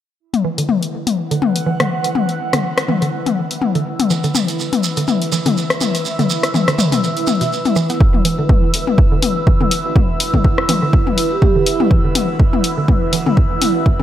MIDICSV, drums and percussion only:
0, 0, Header, 1, 3, 480
1, 0, Start_track
1, 0, Tempo, 487805
1, 198, Time_signature, 4, 2, 24, 8
1, 13804, End_track
2, 0, Start_track
2, 0, Title_t, "Shekere"
2, 4036, Note_on_c, 9, 82, 55
2, 4135, Note_off_c, 9, 82, 0
2, 4167, Note_on_c, 9, 82, 28
2, 4266, Note_off_c, 9, 82, 0
2, 4281, Note_on_c, 9, 82, 99
2, 4379, Note_off_c, 9, 82, 0
2, 4416, Note_on_c, 9, 82, 37
2, 4515, Note_off_c, 9, 82, 0
2, 4521, Note_on_c, 9, 82, 52
2, 4620, Note_off_c, 9, 82, 0
2, 4655, Note_on_c, 9, 82, 26
2, 4754, Note_off_c, 9, 82, 0
2, 4757, Note_on_c, 9, 82, 86
2, 4855, Note_off_c, 9, 82, 0
2, 4888, Note_on_c, 9, 82, 44
2, 4986, Note_off_c, 9, 82, 0
2, 4997, Note_on_c, 9, 82, 50
2, 5095, Note_off_c, 9, 82, 0
2, 5135, Note_on_c, 9, 82, 27
2, 5233, Note_off_c, 9, 82, 0
2, 5237, Note_on_c, 9, 82, 86
2, 5336, Note_off_c, 9, 82, 0
2, 5369, Note_on_c, 9, 82, 37
2, 5467, Note_off_c, 9, 82, 0
2, 5484, Note_on_c, 9, 82, 51
2, 5582, Note_off_c, 9, 82, 0
2, 5613, Note_on_c, 9, 82, 26
2, 5711, Note_off_c, 9, 82, 0
2, 5716, Note_on_c, 9, 82, 85
2, 5815, Note_off_c, 9, 82, 0
2, 5851, Note_on_c, 9, 82, 38
2, 5950, Note_off_c, 9, 82, 0
2, 5954, Note_on_c, 9, 82, 51
2, 6053, Note_off_c, 9, 82, 0
2, 6101, Note_on_c, 9, 82, 25
2, 6197, Note_off_c, 9, 82, 0
2, 6197, Note_on_c, 9, 82, 82
2, 6296, Note_off_c, 9, 82, 0
2, 6332, Note_on_c, 9, 82, 41
2, 6430, Note_off_c, 9, 82, 0
2, 6441, Note_on_c, 9, 82, 55
2, 6539, Note_off_c, 9, 82, 0
2, 6574, Note_on_c, 9, 82, 25
2, 6672, Note_off_c, 9, 82, 0
2, 6681, Note_on_c, 9, 82, 91
2, 6779, Note_off_c, 9, 82, 0
2, 6814, Note_on_c, 9, 82, 42
2, 6912, Note_off_c, 9, 82, 0
2, 6925, Note_on_c, 9, 82, 51
2, 7023, Note_off_c, 9, 82, 0
2, 7054, Note_on_c, 9, 82, 23
2, 7152, Note_off_c, 9, 82, 0
2, 7152, Note_on_c, 9, 82, 99
2, 7251, Note_off_c, 9, 82, 0
2, 7295, Note_on_c, 9, 82, 38
2, 7393, Note_off_c, 9, 82, 0
2, 7409, Note_on_c, 9, 82, 48
2, 7507, Note_off_c, 9, 82, 0
2, 7527, Note_on_c, 9, 82, 26
2, 7625, Note_off_c, 9, 82, 0
2, 7636, Note_on_c, 9, 82, 96
2, 7734, Note_off_c, 9, 82, 0
2, 7768, Note_on_c, 9, 82, 37
2, 7866, Note_off_c, 9, 82, 0
2, 13804, End_track
3, 0, Start_track
3, 0, Title_t, "Drums"
3, 331, Note_on_c, 9, 48, 41
3, 332, Note_on_c, 9, 42, 28
3, 430, Note_off_c, 9, 48, 0
3, 431, Note_off_c, 9, 42, 0
3, 572, Note_on_c, 9, 42, 52
3, 670, Note_off_c, 9, 42, 0
3, 677, Note_on_c, 9, 48, 42
3, 775, Note_off_c, 9, 48, 0
3, 812, Note_on_c, 9, 42, 41
3, 910, Note_off_c, 9, 42, 0
3, 1051, Note_on_c, 9, 48, 39
3, 1052, Note_on_c, 9, 42, 50
3, 1150, Note_off_c, 9, 42, 0
3, 1150, Note_off_c, 9, 48, 0
3, 1292, Note_on_c, 9, 42, 42
3, 1390, Note_off_c, 9, 42, 0
3, 1397, Note_on_c, 9, 48, 44
3, 1495, Note_off_c, 9, 48, 0
3, 1531, Note_on_c, 9, 42, 50
3, 1630, Note_off_c, 9, 42, 0
3, 1771, Note_on_c, 9, 37, 64
3, 1771, Note_on_c, 9, 42, 29
3, 1771, Note_on_c, 9, 48, 41
3, 1870, Note_off_c, 9, 37, 0
3, 1870, Note_off_c, 9, 42, 0
3, 1870, Note_off_c, 9, 48, 0
3, 2011, Note_on_c, 9, 42, 52
3, 2109, Note_off_c, 9, 42, 0
3, 2117, Note_on_c, 9, 48, 45
3, 2215, Note_off_c, 9, 48, 0
3, 2251, Note_on_c, 9, 42, 28
3, 2350, Note_off_c, 9, 42, 0
3, 2491, Note_on_c, 9, 37, 59
3, 2491, Note_on_c, 9, 42, 52
3, 2491, Note_on_c, 9, 48, 43
3, 2590, Note_off_c, 9, 37, 0
3, 2590, Note_off_c, 9, 42, 0
3, 2590, Note_off_c, 9, 48, 0
3, 2731, Note_on_c, 9, 37, 67
3, 2731, Note_on_c, 9, 42, 41
3, 2830, Note_off_c, 9, 37, 0
3, 2830, Note_off_c, 9, 42, 0
3, 2838, Note_on_c, 9, 48, 46
3, 2936, Note_off_c, 9, 48, 0
3, 2971, Note_on_c, 9, 42, 45
3, 3070, Note_off_c, 9, 42, 0
3, 3212, Note_on_c, 9, 42, 42
3, 3212, Note_on_c, 9, 48, 45
3, 3310, Note_off_c, 9, 42, 0
3, 3310, Note_off_c, 9, 48, 0
3, 3452, Note_on_c, 9, 42, 50
3, 3550, Note_off_c, 9, 42, 0
3, 3558, Note_on_c, 9, 48, 44
3, 3656, Note_off_c, 9, 48, 0
3, 3692, Note_on_c, 9, 42, 28
3, 3790, Note_off_c, 9, 42, 0
3, 3931, Note_on_c, 9, 48, 45
3, 3932, Note_on_c, 9, 42, 54
3, 4030, Note_off_c, 9, 42, 0
3, 4030, Note_off_c, 9, 48, 0
3, 4172, Note_on_c, 9, 42, 28
3, 4271, Note_off_c, 9, 42, 0
3, 4277, Note_on_c, 9, 48, 44
3, 4376, Note_off_c, 9, 48, 0
3, 4412, Note_on_c, 9, 42, 49
3, 4510, Note_off_c, 9, 42, 0
3, 4651, Note_on_c, 9, 48, 44
3, 4652, Note_on_c, 9, 42, 40
3, 4750, Note_off_c, 9, 42, 0
3, 4750, Note_off_c, 9, 48, 0
3, 4892, Note_on_c, 9, 42, 46
3, 4991, Note_off_c, 9, 42, 0
3, 4997, Note_on_c, 9, 48, 44
3, 5095, Note_off_c, 9, 48, 0
3, 5132, Note_on_c, 9, 42, 40
3, 5231, Note_off_c, 9, 42, 0
3, 5371, Note_on_c, 9, 48, 45
3, 5372, Note_on_c, 9, 42, 47
3, 5469, Note_off_c, 9, 48, 0
3, 5470, Note_off_c, 9, 42, 0
3, 5611, Note_on_c, 9, 37, 60
3, 5612, Note_on_c, 9, 42, 28
3, 5709, Note_off_c, 9, 37, 0
3, 5711, Note_off_c, 9, 42, 0
3, 5717, Note_on_c, 9, 48, 45
3, 5815, Note_off_c, 9, 48, 0
3, 5852, Note_on_c, 9, 42, 50
3, 5951, Note_off_c, 9, 42, 0
3, 6091, Note_on_c, 9, 48, 41
3, 6092, Note_on_c, 9, 42, 26
3, 6190, Note_off_c, 9, 48, 0
3, 6191, Note_off_c, 9, 42, 0
3, 6331, Note_on_c, 9, 37, 55
3, 6332, Note_on_c, 9, 42, 50
3, 6429, Note_off_c, 9, 37, 0
3, 6430, Note_off_c, 9, 42, 0
3, 6437, Note_on_c, 9, 48, 46
3, 6536, Note_off_c, 9, 48, 0
3, 6572, Note_on_c, 9, 37, 62
3, 6572, Note_on_c, 9, 42, 38
3, 6670, Note_off_c, 9, 37, 0
3, 6670, Note_off_c, 9, 42, 0
3, 6677, Note_on_c, 9, 45, 85
3, 6775, Note_off_c, 9, 45, 0
3, 6812, Note_on_c, 9, 42, 47
3, 6812, Note_on_c, 9, 48, 44
3, 6910, Note_off_c, 9, 42, 0
3, 6910, Note_off_c, 9, 48, 0
3, 7052, Note_on_c, 9, 42, 39
3, 7150, Note_off_c, 9, 42, 0
3, 7157, Note_on_c, 9, 48, 45
3, 7256, Note_off_c, 9, 48, 0
3, 7292, Note_on_c, 9, 42, 46
3, 7390, Note_off_c, 9, 42, 0
3, 7532, Note_on_c, 9, 42, 27
3, 7532, Note_on_c, 9, 48, 47
3, 7630, Note_off_c, 9, 42, 0
3, 7630, Note_off_c, 9, 48, 0
3, 7772, Note_on_c, 9, 42, 48
3, 7870, Note_off_c, 9, 42, 0
3, 7877, Note_on_c, 9, 36, 118
3, 7975, Note_off_c, 9, 36, 0
3, 8012, Note_on_c, 9, 48, 42
3, 8110, Note_off_c, 9, 48, 0
3, 8118, Note_on_c, 9, 46, 98
3, 8216, Note_off_c, 9, 46, 0
3, 8357, Note_on_c, 9, 36, 112
3, 8358, Note_on_c, 9, 48, 44
3, 8455, Note_off_c, 9, 36, 0
3, 8456, Note_off_c, 9, 48, 0
3, 8597, Note_on_c, 9, 46, 92
3, 8696, Note_off_c, 9, 46, 0
3, 8732, Note_on_c, 9, 48, 44
3, 8830, Note_off_c, 9, 48, 0
3, 8837, Note_on_c, 9, 36, 111
3, 8935, Note_off_c, 9, 36, 0
3, 9077, Note_on_c, 9, 46, 91
3, 9078, Note_on_c, 9, 48, 43
3, 9176, Note_off_c, 9, 46, 0
3, 9176, Note_off_c, 9, 48, 0
3, 9317, Note_on_c, 9, 36, 118
3, 9416, Note_off_c, 9, 36, 0
3, 9452, Note_on_c, 9, 48, 46
3, 9550, Note_off_c, 9, 48, 0
3, 9558, Note_on_c, 9, 46, 88
3, 9656, Note_off_c, 9, 46, 0
3, 9797, Note_on_c, 9, 36, 122
3, 9797, Note_on_c, 9, 48, 47
3, 9895, Note_off_c, 9, 36, 0
3, 9896, Note_off_c, 9, 48, 0
3, 10038, Note_on_c, 9, 46, 97
3, 10136, Note_off_c, 9, 46, 0
3, 10171, Note_on_c, 9, 36, 60
3, 10172, Note_on_c, 9, 48, 45
3, 10270, Note_off_c, 9, 36, 0
3, 10270, Note_off_c, 9, 48, 0
3, 10277, Note_on_c, 9, 36, 110
3, 10376, Note_off_c, 9, 36, 0
3, 10412, Note_on_c, 9, 37, 62
3, 10510, Note_off_c, 9, 37, 0
3, 10518, Note_on_c, 9, 46, 99
3, 10518, Note_on_c, 9, 48, 45
3, 10616, Note_off_c, 9, 46, 0
3, 10616, Note_off_c, 9, 48, 0
3, 10757, Note_on_c, 9, 36, 122
3, 10856, Note_off_c, 9, 36, 0
3, 10892, Note_on_c, 9, 48, 44
3, 10990, Note_off_c, 9, 48, 0
3, 10998, Note_on_c, 9, 46, 94
3, 11096, Note_off_c, 9, 46, 0
3, 11237, Note_on_c, 9, 36, 115
3, 11238, Note_on_c, 9, 48, 45
3, 11336, Note_off_c, 9, 36, 0
3, 11336, Note_off_c, 9, 48, 0
3, 11478, Note_on_c, 9, 46, 85
3, 11576, Note_off_c, 9, 46, 0
3, 11612, Note_on_c, 9, 48, 47
3, 11711, Note_off_c, 9, 48, 0
3, 11717, Note_on_c, 9, 36, 122
3, 11815, Note_off_c, 9, 36, 0
3, 11958, Note_on_c, 9, 46, 105
3, 11958, Note_on_c, 9, 48, 45
3, 12056, Note_off_c, 9, 46, 0
3, 12056, Note_off_c, 9, 48, 0
3, 12197, Note_on_c, 9, 36, 114
3, 12295, Note_off_c, 9, 36, 0
3, 12332, Note_on_c, 9, 48, 48
3, 12430, Note_off_c, 9, 48, 0
3, 12438, Note_on_c, 9, 46, 97
3, 12536, Note_off_c, 9, 46, 0
3, 12677, Note_on_c, 9, 36, 124
3, 12678, Note_on_c, 9, 48, 50
3, 12775, Note_off_c, 9, 36, 0
3, 12776, Note_off_c, 9, 48, 0
3, 12918, Note_on_c, 9, 46, 97
3, 13016, Note_off_c, 9, 46, 0
3, 13052, Note_on_c, 9, 48, 47
3, 13150, Note_off_c, 9, 48, 0
3, 13157, Note_on_c, 9, 36, 126
3, 13255, Note_off_c, 9, 36, 0
3, 13398, Note_on_c, 9, 46, 92
3, 13398, Note_on_c, 9, 48, 45
3, 13496, Note_off_c, 9, 46, 0
3, 13496, Note_off_c, 9, 48, 0
3, 13637, Note_on_c, 9, 36, 116
3, 13735, Note_off_c, 9, 36, 0
3, 13772, Note_on_c, 9, 48, 43
3, 13804, Note_off_c, 9, 48, 0
3, 13804, End_track
0, 0, End_of_file